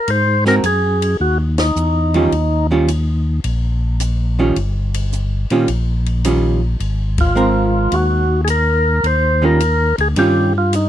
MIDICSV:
0, 0, Header, 1, 5, 480
1, 0, Start_track
1, 0, Tempo, 560224
1, 69, Time_signature, 4, 2, 24, 8
1, 9330, End_track
2, 0, Start_track
2, 0, Title_t, "Tonewheel organ"
2, 0, Program_c, 0, 16
2, 0, Note_on_c, 0, 70, 82
2, 87, Note_on_c, 0, 72, 87
2, 92, Note_off_c, 0, 70, 0
2, 381, Note_off_c, 0, 72, 0
2, 413, Note_on_c, 0, 70, 96
2, 479, Note_off_c, 0, 70, 0
2, 564, Note_on_c, 0, 68, 84
2, 1003, Note_off_c, 0, 68, 0
2, 1039, Note_on_c, 0, 66, 82
2, 1183, Note_off_c, 0, 66, 0
2, 1368, Note_on_c, 0, 63, 74
2, 2287, Note_off_c, 0, 63, 0
2, 6175, Note_on_c, 0, 65, 78
2, 6802, Note_on_c, 0, 66, 79
2, 6819, Note_off_c, 0, 65, 0
2, 7207, Note_off_c, 0, 66, 0
2, 7236, Note_on_c, 0, 68, 69
2, 7273, Note_off_c, 0, 68, 0
2, 7285, Note_on_c, 0, 70, 88
2, 7764, Note_on_c, 0, 72, 93
2, 7772, Note_off_c, 0, 70, 0
2, 8092, Note_off_c, 0, 72, 0
2, 8095, Note_on_c, 0, 70, 94
2, 8533, Note_off_c, 0, 70, 0
2, 8575, Note_on_c, 0, 68, 78
2, 8640, Note_off_c, 0, 68, 0
2, 8729, Note_on_c, 0, 67, 82
2, 9023, Note_off_c, 0, 67, 0
2, 9064, Note_on_c, 0, 65, 78
2, 9209, Note_off_c, 0, 65, 0
2, 9216, Note_on_c, 0, 63, 78
2, 9330, Note_off_c, 0, 63, 0
2, 9330, End_track
3, 0, Start_track
3, 0, Title_t, "Hollow-body jazz guitar"
3, 0, Program_c, 1, 26
3, 394, Note_on_c, 1, 56, 54
3, 399, Note_on_c, 1, 60, 59
3, 403, Note_on_c, 1, 66, 57
3, 406, Note_on_c, 1, 70, 64
3, 533, Note_off_c, 1, 56, 0
3, 536, Note_off_c, 1, 60, 0
3, 538, Note_off_c, 1, 66, 0
3, 540, Note_off_c, 1, 70, 0
3, 1837, Note_on_c, 1, 51, 56
3, 1843, Note_on_c, 1, 55, 61
3, 1848, Note_on_c, 1, 65, 64
3, 1849, Note_on_c, 1, 61, 53
3, 1975, Note_off_c, 1, 51, 0
3, 1978, Note_off_c, 1, 55, 0
3, 1980, Note_off_c, 1, 65, 0
3, 1981, Note_off_c, 1, 61, 0
3, 2320, Note_on_c, 1, 51, 50
3, 2327, Note_on_c, 1, 55, 58
3, 2327, Note_on_c, 1, 61, 69
3, 2331, Note_on_c, 1, 65, 59
3, 2457, Note_off_c, 1, 51, 0
3, 2460, Note_off_c, 1, 55, 0
3, 2460, Note_off_c, 1, 61, 0
3, 2462, Note_off_c, 1, 65, 0
3, 3760, Note_on_c, 1, 51, 52
3, 3766, Note_on_c, 1, 55, 54
3, 3766, Note_on_c, 1, 61, 58
3, 3769, Note_on_c, 1, 65, 55
3, 3897, Note_off_c, 1, 51, 0
3, 3900, Note_off_c, 1, 55, 0
3, 3900, Note_off_c, 1, 61, 0
3, 3901, Note_off_c, 1, 65, 0
3, 4724, Note_on_c, 1, 51, 60
3, 4726, Note_on_c, 1, 55, 63
3, 4730, Note_on_c, 1, 61, 60
3, 4730, Note_on_c, 1, 65, 64
3, 4859, Note_off_c, 1, 51, 0
3, 4860, Note_off_c, 1, 55, 0
3, 4862, Note_off_c, 1, 61, 0
3, 4862, Note_off_c, 1, 65, 0
3, 5356, Note_on_c, 1, 51, 50
3, 5359, Note_on_c, 1, 55, 53
3, 5361, Note_on_c, 1, 61, 50
3, 5365, Note_on_c, 1, 65, 59
3, 5646, Note_off_c, 1, 51, 0
3, 5648, Note_off_c, 1, 55, 0
3, 5649, Note_off_c, 1, 61, 0
3, 5651, Note_off_c, 1, 65, 0
3, 6301, Note_on_c, 1, 56, 51
3, 6307, Note_on_c, 1, 60, 56
3, 6314, Note_on_c, 1, 70, 54
3, 7046, Note_off_c, 1, 56, 0
3, 7049, Note_off_c, 1, 60, 0
3, 7053, Note_off_c, 1, 70, 0
3, 8069, Note_on_c, 1, 51, 52
3, 8074, Note_on_c, 1, 55, 52
3, 8080, Note_on_c, 1, 61, 48
3, 8084, Note_on_c, 1, 65, 53
3, 8212, Note_off_c, 1, 51, 0
3, 8214, Note_off_c, 1, 55, 0
3, 8217, Note_off_c, 1, 61, 0
3, 8219, Note_off_c, 1, 65, 0
3, 8713, Note_on_c, 1, 51, 60
3, 8719, Note_on_c, 1, 55, 55
3, 8724, Note_on_c, 1, 61, 62
3, 8728, Note_on_c, 1, 65, 65
3, 9004, Note_off_c, 1, 51, 0
3, 9007, Note_off_c, 1, 55, 0
3, 9010, Note_off_c, 1, 61, 0
3, 9012, Note_off_c, 1, 65, 0
3, 9330, End_track
4, 0, Start_track
4, 0, Title_t, "Tonewheel organ"
4, 0, Program_c, 2, 16
4, 68, Note_on_c, 2, 44, 82
4, 515, Note_off_c, 2, 44, 0
4, 544, Note_on_c, 2, 42, 61
4, 993, Note_off_c, 2, 42, 0
4, 1026, Note_on_c, 2, 39, 68
4, 1474, Note_off_c, 2, 39, 0
4, 1505, Note_on_c, 2, 40, 69
4, 1953, Note_off_c, 2, 40, 0
4, 1985, Note_on_c, 2, 39, 75
4, 2913, Note_off_c, 2, 39, 0
4, 2948, Note_on_c, 2, 34, 78
4, 3875, Note_off_c, 2, 34, 0
4, 3911, Note_on_c, 2, 31, 74
4, 4682, Note_off_c, 2, 31, 0
4, 4714, Note_on_c, 2, 46, 63
4, 4859, Note_off_c, 2, 46, 0
4, 4869, Note_on_c, 2, 34, 78
4, 5796, Note_off_c, 2, 34, 0
4, 5824, Note_on_c, 2, 32, 74
4, 6753, Note_off_c, 2, 32, 0
4, 6783, Note_on_c, 2, 39, 74
4, 7713, Note_off_c, 2, 39, 0
4, 7739, Note_on_c, 2, 39, 74
4, 8516, Note_off_c, 2, 39, 0
4, 8550, Note_on_c, 2, 38, 68
4, 8697, Note_off_c, 2, 38, 0
4, 8706, Note_on_c, 2, 43, 71
4, 9330, Note_off_c, 2, 43, 0
4, 9330, End_track
5, 0, Start_track
5, 0, Title_t, "Drums"
5, 65, Note_on_c, 9, 51, 49
5, 151, Note_off_c, 9, 51, 0
5, 390, Note_on_c, 9, 38, 34
5, 476, Note_off_c, 9, 38, 0
5, 544, Note_on_c, 9, 44, 43
5, 544, Note_on_c, 9, 51, 59
5, 630, Note_off_c, 9, 44, 0
5, 630, Note_off_c, 9, 51, 0
5, 874, Note_on_c, 9, 51, 60
5, 960, Note_off_c, 9, 51, 0
5, 1354, Note_on_c, 9, 51, 60
5, 1356, Note_on_c, 9, 38, 76
5, 1439, Note_off_c, 9, 51, 0
5, 1442, Note_off_c, 9, 38, 0
5, 1509, Note_on_c, 9, 44, 55
5, 1594, Note_off_c, 9, 44, 0
5, 1835, Note_on_c, 9, 51, 39
5, 1920, Note_off_c, 9, 51, 0
5, 1990, Note_on_c, 9, 51, 45
5, 2076, Note_off_c, 9, 51, 0
5, 2470, Note_on_c, 9, 44, 52
5, 2470, Note_on_c, 9, 51, 53
5, 2556, Note_off_c, 9, 44, 0
5, 2556, Note_off_c, 9, 51, 0
5, 2946, Note_on_c, 9, 51, 57
5, 3032, Note_off_c, 9, 51, 0
5, 3426, Note_on_c, 9, 44, 60
5, 3426, Note_on_c, 9, 51, 58
5, 3512, Note_off_c, 9, 44, 0
5, 3512, Note_off_c, 9, 51, 0
5, 3909, Note_on_c, 9, 51, 47
5, 3994, Note_off_c, 9, 51, 0
5, 4235, Note_on_c, 9, 51, 62
5, 4321, Note_off_c, 9, 51, 0
5, 4390, Note_on_c, 9, 44, 47
5, 4475, Note_off_c, 9, 44, 0
5, 4714, Note_on_c, 9, 51, 44
5, 4800, Note_off_c, 9, 51, 0
5, 4866, Note_on_c, 9, 51, 55
5, 4952, Note_off_c, 9, 51, 0
5, 5195, Note_on_c, 9, 51, 42
5, 5280, Note_off_c, 9, 51, 0
5, 5350, Note_on_c, 9, 44, 48
5, 5350, Note_on_c, 9, 51, 58
5, 5436, Note_off_c, 9, 44, 0
5, 5436, Note_off_c, 9, 51, 0
5, 5828, Note_on_c, 9, 51, 45
5, 5914, Note_off_c, 9, 51, 0
5, 6151, Note_on_c, 9, 51, 67
5, 6154, Note_on_c, 9, 36, 82
5, 6237, Note_off_c, 9, 51, 0
5, 6240, Note_off_c, 9, 36, 0
5, 6308, Note_on_c, 9, 44, 52
5, 6393, Note_off_c, 9, 44, 0
5, 6783, Note_on_c, 9, 51, 55
5, 6868, Note_off_c, 9, 51, 0
5, 7260, Note_on_c, 9, 44, 49
5, 7260, Note_on_c, 9, 51, 62
5, 7346, Note_off_c, 9, 44, 0
5, 7346, Note_off_c, 9, 51, 0
5, 7746, Note_on_c, 9, 51, 42
5, 7831, Note_off_c, 9, 51, 0
5, 8229, Note_on_c, 9, 44, 57
5, 8229, Note_on_c, 9, 51, 59
5, 8314, Note_off_c, 9, 44, 0
5, 8314, Note_off_c, 9, 51, 0
5, 8552, Note_on_c, 9, 51, 41
5, 8638, Note_off_c, 9, 51, 0
5, 8706, Note_on_c, 9, 51, 61
5, 8792, Note_off_c, 9, 51, 0
5, 9192, Note_on_c, 9, 44, 51
5, 9192, Note_on_c, 9, 51, 63
5, 9277, Note_off_c, 9, 44, 0
5, 9277, Note_off_c, 9, 51, 0
5, 9330, End_track
0, 0, End_of_file